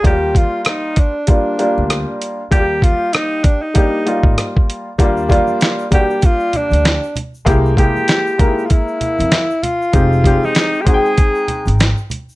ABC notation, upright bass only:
X:1
M:4/4
L:1/16
Q:"Swing 16ths" 1/4=97
K:Eb
V:1 name="Upright bass" clef=bass
E,,3 z8 D,,2 z3 | E,,3 z8 A,, z4 | E,,3 z8 D,,2 z3 | C,,3 z8 F,, z4 |
F,,,3 z8 A,,,2 z3 |]